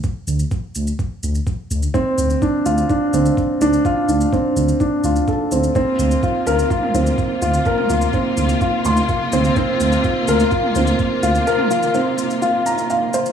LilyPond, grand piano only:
\new Staff \with { instrumentName = "Grand piano" } { \time 4/4 \key bes \lydian \tempo 4 = 126 r1 | c'8 r8 d'8 f'8 d'8 c'8 r8 d'8 | f'8 d'8 c'8 r8 d'8 f'8 a'8 c'8 | c'8 r8 f'8 bes'8 f'8 c'8 r8 f'8 |
bes'8 f'8 c'8 r8 f'8 c'''8 f'8 c'8 | c'8 r8 f'8 bes'8 f'8 c'8 r8 f'8 | bes'8 f'8 c'8 r8 f'8 bes''8 f''8 c''8 | }